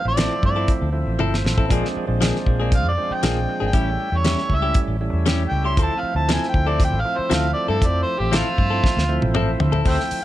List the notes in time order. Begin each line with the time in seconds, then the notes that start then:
0.05 A1 F3 A3 C4 E4 D5
0.17 F3 C4 E4 A4, snare, closed hi-hat
0.43 G2 D5, kick
0.56 C4 E4 A4
0.68 kick, closed hi-hat
0.82 D2
0.92 F3 A3 C4 E4
1.07 A1
1.19 G1 F3 C4 E4 A4, high tom
1.34 snare
1.44 A1, snare
1.58 C4 E4 A4, kick
1.68 A#1 F3 G#3 A#3 C4 D4 G#4, kick, closed hi-hat
1.85 snare
1.96 muted fingered electric bass stroke
2.07 A#1 F3 G#3 C4 D4
2.21 F3 A#3 D4 G#4, snare, closed hi-hat
2.36 snare
2.46 A#1, kick
2.60 A#3 D4 G#4
2.72 F5, kick, closed hi-hat
2.85 F2 D5
2.97 F3 G#3 C4 D4
3.10 G5, muted fingered electric bass stroke
3.23 A#1 F3 A#3 D4 G#4, snare, closed hi-hat
3.60 G#1 A#3 D4 G#4
3.66 G5
3.73 A1 G3 A3 C#4 E4 G4, kick, closed hi-hat
4.12 E2 G3 A3 C#4 E4
4.17 C#5
4.25 G3 C#4 E4 G4, snare, closed hi-hat
4.38 snare
4.49 C#2, kick
4.54 E5
4.62 C#4 E4 G4
4.74 kick, closed hi-hat
4.88 A1
5.01 G3 A3 C#4 E4
5.13 E2
5.26 G3 C#4 E4 G4, snare, closed hi-hat
5.49 C#2 G5
5.64 C#4 E4 G4 C6
5.77 D2 F3 A3 C4 E4 A4, kick, closed hi-hat
5.83 A5
5.99 F5, muted fingered electric bass stroke
6.15 D2 F3 A3 C4 E4 A5
6.29 F3 C4 E4 A4, snare, closed hi-hat
6.33 G#5
6.43 snare
6.49 G5
6.54 D2, kick
6.67 C4 E4 A4 D5
6.80 kick, closed hi-hat
6.84 G5
6.92 A1
7.01 F3 A3 C4 F5
7.05 E4
7.17 C5, muted fingered electric bass stroke
7.30 D2 F3 C4 E4 A4, snare, closed hi-hat
7.35 F5
7.53 D5
7.68 G2 C4 E4 A4
7.81 F2 F3 A3 C4 E4, kick, closed hi-hat
7.86 D5
8.03 C5
8.20 A1 F3 A3 C4 G4 E5
8.32 F3 C4 E4 A4, snare, closed hi-hat
8.36 F4
8.58 G2, kick
8.70 C4 E4 A4
8.84 kick, snare
8.97 D2, snare
9.08 F3 A3 C4 E4
9.22 A1, high tom
9.35 F3 C4 E4 A4, mid tom
9.60 D3, floor tom
9.72 C4 E4 A4, floor tom
9.84 D2 F3 A3 C4 E4 A4 C5 E5 G5, kick, open hi-hat
10.00 snare
10.11 muted fingered electric bass stroke, open hi-hat